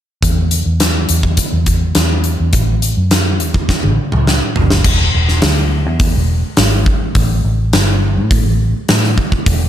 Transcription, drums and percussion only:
0.23 kick, closed hi-hat
0.51 closed hi-hat
0.80 snare, closed hi-hat
1.09 closed hi-hat
1.23 kick
1.37 kick, closed hi-hat
1.66 kick, closed hi-hat
1.95 snare, closed hi-hat
2.24 closed hi-hat
2.53 kick, closed hi-hat
2.82 closed hi-hat
3.11 snare, closed hi-hat
3.40 closed hi-hat
3.54 kick
3.69 kick, snare
3.83 high tom
4.12 mid tom
4.27 snare
4.56 floor tom
4.70 snare
4.84 kick, crash
5.28 snare
5.42 snare, open hi-hat
6.00 kick, open hi-hat
6.57 snare, open hi-hat
6.86 kick
7.15 kick, open hi-hat
7.73 snare, open hi-hat
8.31 kick, open hi-hat
8.89 snare, open hi-hat
9.04 snare
9.18 kick
9.32 kick
9.46 kick, open hi-hat

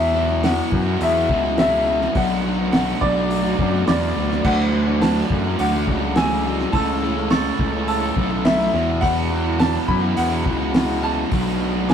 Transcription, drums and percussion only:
0.43 snare, open hi-hat
0.72 kick
1.01 open hi-hat
1.29 kick
1.58 snare, open hi-hat
2.01 snare
2.15 kick, open hi-hat
2.73 snare, open hi-hat
3.02 kick
3.30 open hi-hat
3.59 kick
3.87 snare, open hi-hat
4.31 snare
4.45 kick, crash
5.02 snare, open hi-hat
5.30 kick
5.59 open hi-hat
5.88 kick
6.16 snare, open hi-hat
6.59 snare
6.73 kick, open hi-hat
7.30 snare, open hi-hat
7.59 kick
7.88 open hi-hat
8.17 kick
8.45 snare, open hi-hat
9.02 kick, open hi-hat
9.60 snare, open hi-hat
9.88 kick
10.17 open hi-hat
10.46 kick
10.74 snare, open hi-hat
11.32 kick, open hi-hat
11.89 snare, open hi-hat

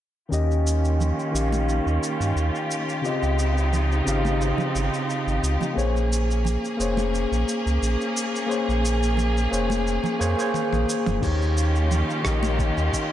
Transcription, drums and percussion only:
0.33 cabasa
0.51 cabasa
0.67 cabasa
0.85 cabasa
1.00 low conga, cabasa
1.19 cabasa
1.35 cabasa
1.52 high conga, cabasa
1.69 cabasa
1.87 cabasa
2.03 cabasa
2.21 cabasa
2.37 cabasa
2.55 cabasa
2.71 cabasa
2.89 cabasa
3.05 cabasa
3.23 cabasa
3.39 cabasa
3.57 cabasa
3.73 low conga, cabasa
3.92 cabasa
4.07 cabasa
4.25 high conga, cabasa
4.41 cabasa
4.58 low conga, cabasa
4.75 cabasa
4.94 cabasa
5.10 cabasa
5.28 cabasa
5.44 cabasa
5.61 high conga, low conga, cabasa
5.79 cabasa
5.97 cabasa
6.12 cabasa
6.31 cabasa
6.45 low conga, cabasa
6.65 cabasa
6.80 cabasa
6.97 high conga, cabasa
7.15 cabasa
7.33 cabasa
7.48 cabasa
7.67 cabasa
7.83 cabasa
8.01 cabasa
8.17 cabasa
8.36 cabasa
8.51 cabasa
8.70 cabasa
8.85 cabasa
9.03 cabasa
9.17 low conga, cabasa
9.37 cabasa
9.53 cabasa
9.70 high conga, cabasa
9.87 cabasa
10.04 low conga, cabasa
10.21 cabasa
10.39 cabasa
10.54 high tom, cabasa
10.73 high tom, cabasa
10.89 cabasa
11.06 mid tom, high conga, low conga, cabasa
11.22 kick, crash, cabasa
11.42 cabasa
11.57 cabasa
11.75 cabasa
11.91 low conga, cabasa
12.10 cabasa
12.25 kick, cross-stick, cabasa
12.43 high conga, cabasa
12.59 kick, cabasa
12.77 cabasa
12.93 kick, cabasa

